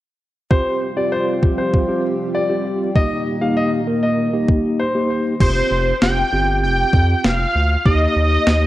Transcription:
0.51 2.93 C3 medium
0.51 2.93 F3 medium
0.51 5.37 G3 medium
0.51 0.90 C4 medium
0.51 0.90 F4 medium
0.51 2.93 F4 medium
0.51 0.90 G4 medium
0.51 5.37 G4 medium
0.51 0.75 C5 medium
0.51 kick loud
0.97 1.36 C4 medium
0.97 1.36 F4 medium
0.97 1.36 G4 medium
0.97 1.09 D5 medium
1.12 1.24 C5 medium
1.43 1.82 C4 medium
1.43 1.82 F4 medium
1.43 1.82 G4 medium
1.43 kick medium
1.58 2.01 C5 medium
1.74 kick medium
1.89 2.41 C4 medium
1.89 2.41 F4 medium
1.89 2.41 G4 medium
2.35 2.78 D5 medium
2.50 2.89 C4 medium
2.50 2.89 F4 medium
2.50 2.89 G4 medium
2.96 5.38 A#2 medium
2.96 5.38 D#3 medium
2.96 3.35 A#3 medium
2.96 3.35 D#4 medium
2.96 5.38 D#4 medium
2.96 3.35 G4 medium
2.96 3.19 D#5 loud
2.96 kick loud
3.41 3.81 A#3 medium
3.41 3.81 D#4 medium
3.41 3.81 G4 medium
3.41 3.53 F5 medium
3.57 3.69 D#5 medium
3.87 4.27 A#3 medium
3.87 4.27 D#4 medium
3.87 4.27 A#4 medium
4.03 4.46 D#5 medium
4.33 4.86 A#3 medium
4.33 4.86 D#4 medium
4.33 4.86 G4 medium
4.48 kick medium
4.79 5.23 C5 medium
4.95 5.34 A#3 medium
4.95 5.34 D#4 medium
4.95 5.34 G4 medium
5.40 5.62 F1 loud
5.40 5.93 C4 medium
5.40 5.93 F4 medium
5.40 5.93 G4 medium
5.40 5.98 C5 loud
5.40 kick loud
5.40 crash medium
5.71 5.93 F1 loud
6.02 6.23 F1 loud
6.02 6.28 C4 medium
6.02 6.28 F4 medium
6.02 6.28 G4 medium
6.02 6.59 G5 loud
6.02 snare loud
6.32 6.65 G1 medium
6.32 7.37 C4 medium
6.32 7.37 F4 medium
6.32 7.37 G4 medium
6.63 6.85 F1 loud
6.63 7.17 G5 loud
6.93 7.15 F2 medium
6.93 kick medium
7.17 7.26 G5 medium
7.24 7.46 F1 loud
7.24 7.85 F5 loud
7.24 snare loud
7.55 7.76 D2 medium
7.85 8.07 D#2 loud
7.85 8.64 A#3 medium
7.85 8.64 D#4 medium
7.85 8.64 G4 medium
7.85 8.67 D#5 loud
7.85 kick loud
8.16 8.38 D#2 loud
8.47 8.67 D#2 loud
8.47 snare loud

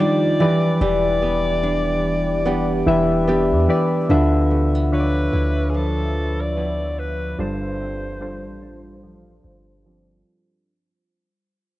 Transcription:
0.00 0.19 D#3 medium
0.00 0.40 D#3 medium
0.00 0.36 F3 medium
0.00 1.22 G3 medium
0.00 0.84 D4 medium
0.00 0.19 D#4 medium
0.00 0.20 F4 medium
0.00 0.50 F4 medium
0.00 0.20 G4 medium
0.00 0.37 G4 medium
0.00 0.20 D5 medium
0.00 4.06 D5 medium
0.00 0.82 D5 loud
0.40 1.73 E3 medium
0.40 0.81 E3 medium
0.40 4.06 E3 medium
0.40 1.73 E4 medium
0.40 4.06 G4 medium
0.40 1.73 G4 medium
0.40 1.73 B4 medium
0.40 1.74 D5 medium
0.81 2.83 E1 loud
0.81 4.09 E3 medium
0.81 2.45 G4 medium
0.81 3.65 D5 loud
1.22 2.45 B3 medium
1.63 2.46 D4 medium
2.45 3.27 B3 medium
2.45 3.28 D4 medium
2.45 3.28 G4 medium
2.86 3.53 E1 loud
2.86 3.48 E3 medium
2.86 3.48 E4 medium
2.86 3.48 G4 medium
2.86 3.48 B4 medium
2.86 3.49 E5 loud
3.28 4.54 B3 medium
3.28 4.50 D4 medium
3.28 4.20 G4 medium
3.51 3.68 E2 loud
3.68 4.00 E3 medium
3.68 4.00 E4 medium
3.68 4.00 G4 medium
3.68 4.00 B4 medium
3.68 4.01 D5 medium
4.09 5.29 D2 loud
4.09 4.71 D3 medium
4.09 7.60 D3 medium
4.09 7.35 F3 medium
4.09 4.71 D4 medium
4.09 4.71 F4 medium
4.09 7.36 B4 medium
4.09 4.72 B4 medium
4.09 7.35 E5 medium
4.09 4.72 E5 loud
4.51 4.75 A3 medium
4.75 6.56 B3 medium
4.92 6.10 D3 medium
4.92 6.10 D4 medium
4.92 6.10 F4 medium
4.92 6.11 B4 medium
4.92 5.71 B4 loud
4.92 5.00 C#5 medium
5.00 6.14 D5 medium
5.33 7.35 D2 loud
5.33 6.56 E4 medium
5.70 5.78 G#4 medium
5.74 6.56 F3 medium
5.74 6.42 A4 loud
6.41 7.00 D5 loud
6.56 9.03 F3 medium
6.56 7.48 B3 medium
6.56 7.49 E4 medium
6.99 7.39 B4 loud
7.38 8.46 G1 loud
7.38 10.89 G2 medium
7.38 8.00 G3 medium
7.38 10.64 G3 medium
7.38 8.00 D4 medium
7.38 10.64 F4 medium
7.38 8.00 F4 medium
7.38 8.00 A4 medium
7.38 10.64 C5 medium
7.38 9.82 C5 loud
7.38 8.01 C5 medium
7.80 9.86 C4 medium
8.21 9.39 G3 medium
8.21 9.39 D4 medium
8.21 9.39 F4 medium
8.21 9.39 A4 medium
8.21 9.40 C5 medium
8.45 9.40 A1 medium
8.62 9.86 D4 medium
9.03 9.85 F3 medium
9.44 10.23 G1 loud
9.86 11.28 F3 medium
9.86 11.28 C4 medium
9.86 11.28 D4 medium

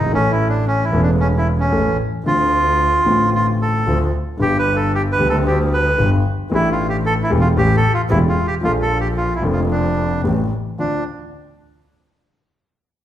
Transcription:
0.00 0.12 G1 medium
0.00 0.12 D#4 medium
0.06 0.13 G#1 medium
0.11 0.89 A1 medium
0.11 0.89 A2 medium
0.11 0.88 E3 medium
0.11 0.89 A3 medium
0.11 0.89 C#4 medium
0.11 0.32 C#4 loud
0.15 0.90 A4 medium
0.32 0.48 E4 medium
0.49 0.65 D4 medium
0.67 0.85 C#4 medium
0.85 1.01 E4 medium
0.91 1.69 E1 loud
0.91 1.69 E1 medium
0.91 1.69 E2 medium
0.91 1.68 E3 medium
0.91 1.68 A3 medium
0.91 1.69 C#4 medium
0.91 1.70 A4 medium
1.03 1.10 D4 medium
1.20 1.28 C#4 medium
1.38 1.48 E4 medium
1.60 1.97 C#4 medium
1.72 1.95 A1 medium
1.72 1.95 A1 loud
1.72 1.95 A2 medium
1.72 1.95 E3 medium
1.72 1.95 A3 medium
1.72 1.95 C#4 medium
1.72 1.95 A4 medium
2.24 3.02 D2 medium
2.24 2.25 D3 medium
2.24 3.02 D3 medium
2.24 3.02 A3 medium
2.24 3.03 C4 medium
2.24 3.30 F4 medium
2.28 3.03 F4 medium
3.04 3.82 A1 medium
3.04 3.83 A1 medium
3.04 3.83 A2 medium
3.04 3.82 D3 medium
3.04 3.82 A3 medium
3.04 3.83 C4 medium
3.08 3.84 F4 medium
3.35 3.47 F4 medium
3.62 3.98 A4 medium
3.86 4.09 D2 loud
3.86 4.09 D2 medium
3.86 4.09 D3 medium
3.86 4.09 A3 medium
3.86 4.09 C4 medium
3.86 4.09 F4 medium
4.37 5.15 G1 medium
4.37 5.15 G2 medium
4.37 5.14 D3 medium
4.37 5.15 G3 medium
4.37 5.16 B3 medium
4.37 5.16 G4 medium
4.42 4.57 G4 loud
4.59 4.76 B4 loud
4.76 4.92 A4 medium
4.95 5.02 G4 medium
5.12 5.28 B4 loud
5.18 5.95 D2 loud
5.18 5.95 D2 medium
5.18 5.95 D3 medium
5.18 5.95 G3 medium
5.18 5.95 B3 medium
5.18 5.96 G4 medium
5.30 5.37 A4 medium
5.47 5.59 G4 medium
5.73 6.10 B4 medium
5.98 6.21 G1 medium
5.98 6.21 G1 loud
5.98 6.21 G2 medium
5.98 6.21 D3 medium
5.98 6.21 G3 medium
5.98 6.21 B3 medium
5.98 6.21 G4 medium
6.50 7.27 A1 medium
6.50 7.27 A2 medium
6.50 7.26 E3 medium
6.50 7.27 A3 medium
6.50 7.27 D4 medium
6.54 6.70 E4 loud
6.54 7.28 G4 medium
6.72 6.87 F4 medium
6.89 6.97 G4 medium
7.06 7.14 A4 loud
7.23 7.31 E4 medium
7.30 7.53 E1 medium
7.30 7.53 E2 loud
7.30 7.53 E3 medium
7.30 7.53 A3 medium
7.30 7.53 D4 medium
7.30 7.53 G4 medium
7.41 7.48 F4 medium
7.56 7.79 A1 loud
7.56 7.80 A2 medium
7.56 7.79 E3 medium
7.56 7.79 A3 medium
7.56 7.79 C#4 medium
7.56 7.80 G4 medium
7.56 7.76 G4 loud
7.77 7.92 A4 loud
7.94 8.02 F4 loud
8.10 8.32 E1 loud
8.10 8.33 E1 medium
8.10 8.33 E2 medium
8.10 8.32 E3 medium
8.10 8.32 A3 medium
8.10 8.32 C#4 medium
8.10 8.19 E4 loud
8.10 8.33 G4 medium
8.29 8.47 F4 medium
8.47 8.55 G4 medium
8.61 9.39 A#1 medium
8.61 9.39 A#2 medium
8.61 9.38 F3 medium
8.61 9.39 A#3 medium
8.61 9.40 D4 medium
8.61 8.72 F4 loud
8.65 9.40 A4 medium
8.82 8.98 A4 medium
9.00 9.08 G4 medium
9.17 9.34 F4 medium
9.35 9.43 E4 medium
9.41 10.20 F1 medium
9.41 10.20 F1 loud
9.41 10.20 F2 medium
9.41 10.19 F3 medium
9.41 10.20 A#3 medium
9.41 10.21 D4 medium
9.45 10.21 A4 medium
9.53 9.61 F4 medium
9.71 10.21 D4 medium
10.24 10.47 A1 medium
10.24 10.47 A2 medium
10.24 10.47 E3 medium
10.24 10.47 A3 medium
10.24 10.47 C#4 medium
10.24 10.47 G4 medium
10.78 11.01 D2 medium
10.78 11.01 C4 soft
10.78 11.01 D4 soft
10.78 11.04 D4 medium
10.78 11.01 F4 medium

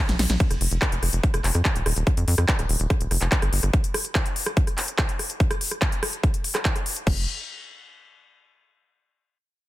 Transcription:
0.09 0.16 A#1 medium
0.09 snare medium
0.09 closed hi-hat medium
0.19 0.27 A#1 loud
0.19 snare medium
0.19 open hi-hat medium
0.19 ride medium
0.30 0.37 A#1 medium
0.30 snare medium
0.30 closed hi-hat medium
0.40 kick loud
0.40 closed hi-hat medium
0.51 0.58 F1 medium
0.51 cross-stick soft
0.51 closed hi-hat medium
0.61 0.68 F1 loud
0.61 open hi-hat loud
0.71 0.79 F1 medium
0.71 closed hi-hat medium
0.82 kick loud
0.82 cross-stick medium
0.82 clap loud
0.82 closed hi-hat medium
0.92 1.00 F1 medium
0.92 closed hi-hat medium
1.03 1.10 F1 loud
1.03 cross-stick soft
1.03 open hi-hat loud
1.13 1.20 F1 medium
1.13 closed hi-hat medium
1.23 kick loud
1.23 closed hi-hat medium
1.34 1.41 F1 medium
1.34 cross-stick medium
1.34 closed hi-hat medium
1.44 1.52 F1 loud
1.44 clap soft
1.44 open hi-hat loud
1.55 1.62 F2 medium
1.55 cross-stick soft
1.55 closed hi-hat medium
1.65 kick loud
1.65 clap loud
1.65 closed hi-hat medium
1.76 1.83 D#1 medium
1.76 closed hi-hat medium
1.86 1.93 D#1 loud
1.86 cross-stick medium
1.86 open hi-hat medium
1.96 2.04 D#1 medium
1.96 closed hi-hat medium
2.07 kick loud
2.07 cross-stick soft
2.07 closed hi-hat medium
2.17 2.25 F2 medium
2.17 closed hi-hat medium
2.28 2.35 F2 loud
2.28 open hi-hat loud
2.38 2.45 F2 medium
2.38 cross-stick medium
2.38 closed hi-hat medium
2.48 kick loud
2.48 clap loud
2.48 closed hi-hat medium
2.59 2.66 D#1 medium
2.59 cross-stick soft
2.59 closed hi-hat medium
2.69 2.77 D#1 loud
2.69 open hi-hat loud
2.80 2.87 D#1 medium
2.80 closed hi-hat medium
2.90 kick loud
2.90 cross-stick medium
2.90 closed hi-hat medium
3.01 3.08 D#1 medium
3.01 closed hi-hat medium
3.11 3.18 F1 loud
3.11 cross-stick soft
3.11 open hi-hat loud
3.21 3.29 F1 medium
3.21 clap soft
3.21 closed hi-hat medium
3.32 kick loud
3.32 clap loud
3.32 closed hi-hat medium
3.42 3.50 G1 medium
3.42 cross-stick medium
3.42 closed hi-hat medium
3.53 3.60 G1 loud
3.53 open hi-hat loud
3.63 3.70 G1 medium
3.63 cross-stick soft
3.63 closed hi-hat medium
3.74 kick loud
3.74 closed hi-hat medium
3.84 closed hi-hat medium
3.94 cross-stick medium
3.94 open hi-hat loud
4.05 closed hi-hat medium
4.15 kick loud
4.15 cross-stick soft
4.15 clap loud
4.15 closed hi-hat medium
4.26 closed hi-hat medium
4.36 open hi-hat loud
4.46 cross-stick medium
4.46 closed hi-hat medium
4.57 kick loud
4.57 closed hi-hat medium
4.67 cross-stick soft
4.67 closed hi-hat medium
4.78 clap soft
4.78 open hi-hat loud
4.88 closed hi-hat medium
4.99 kick loud
4.99 cross-stick medium
4.99 clap loud
4.99 closed hi-hat medium
5.09 closed hi-hat medium
5.19 cross-stick soft
5.19 open hi-hat loud
5.30 closed hi-hat medium
5.40 kick loud
5.40 closed hi-hat medium
5.51 cross-stick medium
5.51 closed hi-hat medium
5.61 open hi-hat loud
5.71 cross-stick soft
5.71 closed hi-hat medium
5.82 kick loud
5.82 clap loud
5.82 closed hi-hat medium
5.92 closed hi-hat medium
6.03 cross-stick medium
6.03 open hi-hat loud
6.13 closed hi-hat medium
6.24 kick loud
6.24 cross-stick soft
6.24 closed hi-hat medium
6.34 closed hi-hat medium
6.44 open hi-hat loud
6.55 cross-stick medium
6.55 clap soft
6.55 closed hi-hat medium
6.65 kick loud
6.65 clap loud
6.65 closed hi-hat medium
6.76 cross-stick soft
6.76 closed hi-hat medium
6.86 open hi-hat loud
6.96 closed hi-hat medium
7.07 7.26 F1 loud
7.07 kick loud
7.07 crash medium

